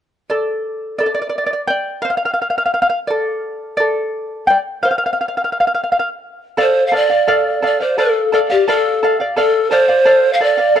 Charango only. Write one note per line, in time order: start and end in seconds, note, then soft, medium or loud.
0.30 0.96 A4 soft
0.30 0.97 D5 medium
0.98 1.07 A4 soft
0.98 1.05 D5 medium
1.06 1.13 D5 soft
1.15 1.20 D5 medium
1.22 1.28 D5 soft
1.29 1.37 D5 soft
1.38 1.45 D5 medium
1.46 1.52 D5 medium
1.53 1.61 D5 soft
1.68 2.02 D5 medium
1.68 2.01 G5 medium
2.02 2.12 C5 medium
2.02 2.09 F5 medium
2.10 2.16 F5 medium
2.17 2.24 F5 medium
2.25 2.33 F5 soft
2.34 2.41 F5 soft
2.42 2.49 F5 soft
2.50 2.57 F5 soft
2.58 2.64 F5 soft
2.66 2.73 F5 soft
2.74 2.81 F5 soft
2.82 2.88 F5 medium
2.90 2.98 F5 medium
3.07 3.76 A4 medium
3.07 3.76 D5 medium
3.77 4.45 A4 soft
3.77 4.44 D5 medium
4.47 4.59 D5 medium
4.47 4.57 G5 medium
4.83 4.92 C5 medium
4.83 4.90 F5 medium
4.91 4.97 F5 soft
4.98 5.05 F5 medium
5.06 5.12 F5 soft
5.13 5.20 F5 soft
5.21 5.27 F5 soft
5.28 5.36 F5 soft
5.37 5.43 F5 soft
5.44 5.51 F5 soft
5.52 5.59 F5 soft
5.60 5.66 F5 soft
5.67 5.73 F5 soft
5.75 5.82 F5 soft
5.84 5.91 F5 soft
5.92 5.98 F5 medium
5.99 6.08 F5 soft
6.57 6.91 A4 medium
6.57 6.92 D5 medium
6.57 6.92 F5 medium
6.92 7.10 A4 medium
6.92 7.10 D5 medium
6.92 7.08 F5 medium
7.10 7.27 D5 soft
7.10 7.27 F5 soft
7.27 7.61 A4 medium
7.27 7.62 D5 medium
7.27 7.62 F5 medium
7.62 7.80 A4 medium
7.62 7.80 D5 medium
7.62 7.79 F5 medium
7.80 7.97 D5 soft
7.80 7.98 F5 soft
7.98 8.31 A4 medium
7.98 8.32 D5 medium
7.98 8.33 F5 medium
8.32 8.50 A4 medium
8.32 8.50 D5 medium
8.32 8.49 F5 medium
8.50 8.67 D5 soft
8.50 8.67 F5 soft
8.68 9.02 A4 medium
8.68 9.02 D5 medium
8.68 9.03 F5 medium
9.03 9.20 A4 medium
9.03 9.20 D5 medium
9.03 9.19 F5 medium
9.20 9.36 D5 soft
9.20 9.36 F5 medium
9.36 9.70 A4 medium
9.36 9.71 D5 medium
9.36 9.71 F5 medium
9.71 9.89 A4 medium
9.71 9.88 D5 medium
9.71 9.87 F5 medium
9.88 10.04 D5 soft
9.88 10.05 F5 soft
10.05 10.39 A4 medium
10.05 10.40 D5 medium
10.05 10.41 F5 medium
10.40 10.58 A4 medium
10.40 10.58 D5 medium
10.40 10.56 F5 medium
10.58 10.75 D5 soft
10.58 10.75 F5 soft
10.76 10.80 A4 medium
10.76 10.80 D5 medium
10.76 10.80 F5 medium